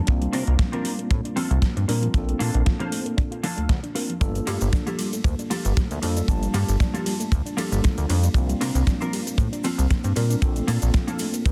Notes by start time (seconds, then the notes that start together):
0.06 C2 F3 G3 A#3 C4 D4 F4, kick, closed hi-hat
0.21 G3, closed hi-hat
0.33 C3 A#3 C4 D4 F4 A#4, open hi-hat
0.47 C2 C4, closed hi-hat
0.59 D4, kick, snare, closed hi-hat
0.72 F3 C4 D4 F4 A#4, closed hi-hat
0.85 G3, open hi-hat
0.99 A#3, closed hi-hat
1.10 A2 C4, muted clean electric guitar stroke, kick, closed hi-hat
1.25 D4, closed hi-hat
1.36 F3 C4 D4 F4 A4, open hi-hat
1.50 C2 G3, closed hi-hat
1.62 A#3, kick, snare, closed hi-hat
1.76 G2 C4, closed hi-hat
1.88 A#2 G3 C4 D4 F4 A#4, muted clean electric guitar stroke, open hi-hat
2.02 F3, muted clean electric guitar stroke, closed hi-hat
2.14 A#1 F3 A#3 C4 D4 F4 A4, kick, closed hi-hat
2.28 A3, closed hi-hat
2.39 A#2 A#3 D4 F4 A4, open hi-hat
2.54 A#1 D4, closed hi-hat
2.66 F4, kick, snare, closed hi-hat
2.79 F3 A#3 D4 F4 C5, closed hi-hat
2.92 A3, open hi-hat
3.05 A#3, closed hi-hat
3.17 D4, muted clean electric guitar stroke, kick, closed hi-hat
3.31 F4, closed hi-hat
3.43 F3 A#3 D4 F4 A4, open hi-hat
3.57 D2 A3, closed hi-hat
3.69 D2 A#3, kick, snare, closed hi-hat
3.83 D4, closed hi-hat
3.95 A#3 C4 D4 F4 A#4, muted clean electric guitar stroke, open hi-hat
4.09 F3, muted clean electric guitar stroke, closed hi-hat
4.20 G1 G3 A#3 D4 F4 A4, kick, closed hi-hat, cabasa
4.35 G3, closed hi-hat, cabasa
4.47 G2 A3 A#3 F4 G4 A4, open hi-hat, ride, cabasa
4.61 G1 A#3, closed hi-hat, cabasa
4.73 D4, kick, snare, closed hi-hat, cabasa
4.75 cabasa
4.86 F3 A#3 F4 G4 A4, closed hi-hat, cabasa
4.99 G3, open hi-hat, ride, cabasa
5.13 A3, closed hi-hat, cabasa
5.24 D2 A#3, muted clean electric guitar stroke, kick, closed hi-hat, cabasa
5.39 D4, closed hi-hat, cabasa
5.50 F3 A#3 F4 G4 A4, open hi-hat, ride, cabasa
5.65 G1 G3, closed hi-hat, cabasa
5.77 A3, kick, snare, closed hi-hat, cabasa
5.91 D2 A#3, closed hi-hat, cabasa
6.02 F2 G3 A#3 D4 F4 A4, muted clean electric guitar stroke, open hi-hat, ride, cabasa
6.16 D4, muted clean electric guitar stroke, closed hi-hat, cabasa
6.27 G1 F3 G3 A#3 D4 F4 A5, kick, closed hi-hat, cabasa
6.42 G3, closed hi-hat, cabasa
6.54 G2 A3 A#3 F4 G4 A4, open hi-hat, ride, cabasa
6.68 G1 A#3, closed hi-hat, cabasa
6.80 D4, kick, snare, closed hi-hat, cabasa
6.94 F3 A#3 F4 G4 A4, closed hi-hat, cabasa
7.06 G3, open hi-hat, ride, cabasa
7.20 A3, closed hi-hat, cabasa
7.32 D2 A#3, muted clean electric guitar stroke, kick, closed hi-hat, cabasa
7.46 D4, closed hi-hat, cabasa
7.57 F3 G3 A#3 D4 F4 G4 A4, open hi-hat, ride, cabasa
7.71 G1 G3, closed hi-hat, cabasa
7.73 cabasa
7.83 A3, kick, snare, closed hi-hat, cabasa
7.98 D2 A#3, closed hi-hat, cabasa
8.09 F2 D4, muted clean electric guitar stroke, open hi-hat, ride, cabasa
8.23 D4, muted clean electric guitar stroke, closed hi-hat, cabasa
8.34 C2 F3 G3 A#3 C4 D4 F4, kick, closed hi-hat, cabasa
8.49 G3, closed hi-hat, cabasa
8.61 C3 A#3 C4 D4 F4 A#4, open hi-hat, ride, cabasa
8.75 C2 C4, closed hi-hat, cabasa
8.87 D4, kick, snare, closed hi-hat, cabasa
9.00 F3 C4 D4 F4 A#4, closed hi-hat, cabasa
9.13 G3, open hi-hat, ride, cabasa
9.27 A#3, closed hi-hat, cabasa
9.38 A2 C4, muted clean electric guitar stroke, kick, closed hi-hat, cabasa
9.39 cabasa
9.52 D4, closed hi-hat, cabasa
9.64 F3 C4 D4 F4 A4, open hi-hat, ride, cabasa
9.78 C2 G3, closed hi-hat, cabasa
9.90 A#3, kick, snare, closed hi-hat, cabasa
10.03 G2 C4, closed hi-hat, cabasa
10.15 A#2 G3 C4 D4 F4 A#4, muted clean electric guitar stroke, open hi-hat, ride, cabasa
10.30 D4, muted clean electric guitar stroke, closed hi-hat, cabasa
10.41 A#1 F3 A#3 C4 D4 F4 A4, kick, closed hi-hat, cabasa
10.56 A3, closed hi-hat, cabasa
10.67 A#2 A#3 D4 F4 A4, open hi-hat, ride, cabasa
10.82 A#1 D4, closed hi-hat, cabasa
10.94 F4, kick, snare, closed hi-hat, cabasa
11.07 F3 A#3 D4 F4 A4, closed hi-hat, cabasa
11.19 A3, open hi-hat, ride, cabasa
11.34 A#3, closed hi-hat, cabasa
11.45 G2 D4, muted clean electric guitar stroke, kick, closed hi-hat, cabasa